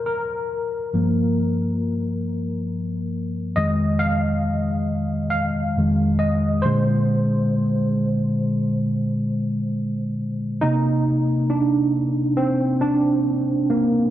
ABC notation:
X:1
M:4/4
L:1/8
Q:"Swing 16ths" 1/4=68
K:Cm
V:1 name="Tine electric piano"
B2 z6 | e f3 f2 e c- | c6- c z | E2 D2 C D2 B, |]
V:2 name="Tine electric piano" clef=bass
z2 [G,,F,B,]3 z3 | [F,,E,A,]4- [F,,E,A,] [F,,E,A,] z [B,,D,A,] | z8 | [C,B,E]8 |]